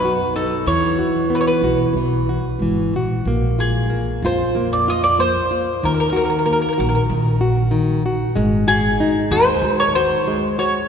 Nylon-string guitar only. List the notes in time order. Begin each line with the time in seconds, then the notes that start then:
Already playing: B2
0.05 F#4
0.36 D#4
0.68 E3
0.99 F#4
1.30 B3
1.64 F#4
1.97 E3
2.29 F#4
2.62 E3
2.96 F#4
3.28 A#3
3.59 F4
3.90 A#3
4.25 F4
4.56 A#3
4.88 F4
5.19 A#3
5.51 F4
5.83 D#3
6.13 F#4
6.46 A#3
6.78 F#4
7.09 D#3
7.41 F#4
7.71 D#3
8.06 F#4
8.35 G#3
8.68 F#4
9.00 D#4
9.32 F#4
9.65 G#3
9.96 F#4
10.28 G#3
10.59 F#4